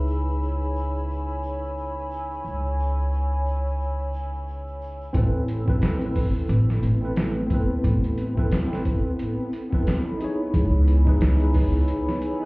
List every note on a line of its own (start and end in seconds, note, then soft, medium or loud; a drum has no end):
0.00 2.42 C#2 medium
0.00 5.09 D#4 medium
0.00 5.10 E4 medium
0.00 5.12 G#4 medium
0.00 5.13 B4 medium
0.00 5.11 C#5 medium
0.00 5.11 G#5 medium
0.00 5.11 B5 medium
0.00 5.10 E6 medium
0.08 shaker medium
0.28 shaker soft
0.42 shaker medium
0.61 shaker soft
0.76 shaker medium
0.95 shaker soft
1.10 shaker soft
1.29 shaker soft
1.43 shaker medium
1.63 shaker soft
1.77 shaker soft
1.98 shaker soft
2.11 shaker medium
2.31 shaker soft
2.44 5.11 C#2 medium
2.44 shaker soft
2.65 shaker soft
2.79 shaker medium
2.98 shaker soft
3.12 shaker medium
3.32 shaker soft
3.46 shaker medium
3.67 shaker soft
3.80 shaker soft
3.99 shaker soft
4.13 shaker medium
4.33 shaker soft
4.47 shaker soft
4.67 shaker soft
4.81 shaker medium
5.01 shaker soft
5.13 6.46 A1 medium
5.13 10.50 A3 medium
5.13 12.45 B3 medium
5.13 5.59 C4 loud
5.13 5.60 E4 medium
5.13 5.60 A4 medium
5.13 12.45 B5 medium
5.13 7.81 E6 medium
5.13 kick loud
5.13 closed hi-hat medium
5.17 5.61 B4 loud
5.48 closed hi-hat medium
5.66 5.96 C4 medium
5.66 5.96 E4 medium
5.66 5.97 A4 medium
5.66 5.98 B4 loud
5.66 kick medium
5.82 snare loud
5.82 closed hi-hat medium
5.98 6.97 C4 medium
5.98 6.98 E4 medium
5.98 closed hi-hat soft
6.03 6.99 A4 medium
6.03 7.01 B4 medium
6.15 kick loud
6.15 open hi-hat medium
6.49 6.79 A1 loud
6.49 closed hi-hat medium
6.70 snare soft
6.83 7.48 A1 medium
6.83 closed hi-hat medium
7.01 7.46 C4 medium
7.01 7.47 E4 medium
7.01 7.47 A4 medium
7.01 7.48 B4 medium
7.16 snare loud
7.16 closed hi-hat medium
7.47 8.31 C4 medium
7.47 8.32 E4 medium
7.47 kick medium
7.47 closed hi-hat medium
7.52 8.33 A4 medium
7.52 8.35 B4 medium
7.84 9.16 A1 loud
7.84 kick loud
7.84 closed hi-hat medium
8.04 closed hi-hat soft
8.18 closed hi-hat medium
8.35 8.65 C4 medium
8.35 8.66 E4 medium
8.35 8.67 A4 medium
8.35 8.67 B4 loud
8.35 kick medium
8.51 snare loud
8.51 closed hi-hat medium
8.67 9.66 C4 medium
8.67 9.68 E4 medium
8.72 9.69 A4 medium
8.72 9.70 B4 medium
8.72 snare soft
8.85 kick medium
8.85 closed hi-hat medium
9.19 closed hi-hat medium
9.53 closed hi-hat medium
9.70 10.16 C4 medium
9.70 10.16 E4 medium
9.70 10.17 A4 medium
9.70 10.17 B4 loud
9.70 kick medium
9.87 snare loud
9.87 closed hi-hat medium
10.17 11.01 D#4 medium
10.17 11.02 E4 medium
10.17 closed hi-hat medium
10.22 11.03 G#4 medium
10.22 11.04 C#5 medium
10.54 11.86 C#2 loud
10.54 12.45 C#5 medium
10.54 12.45 G#5 medium
10.54 12.45 E6 medium
10.54 kick loud
10.54 closed hi-hat medium
10.88 closed hi-hat medium
11.05 11.35 D#4 medium
11.05 11.36 E4 medium
11.05 11.36 G#4 medium
11.05 11.37 B4 loud
11.05 kick loud
11.21 snare loud
11.21 closed hi-hat medium
11.36 12.36 D#4 medium
11.36 12.37 E4 medium
11.40 12.38 G#4 medium
11.40 12.39 B4 medium
11.40 closed hi-hat soft
11.54 kick loud
11.54 open hi-hat medium
11.88 closed hi-hat medium
12.09 snare soft
12.22 closed hi-hat medium
12.40 12.45 D#4 medium
12.40 12.45 E4 medium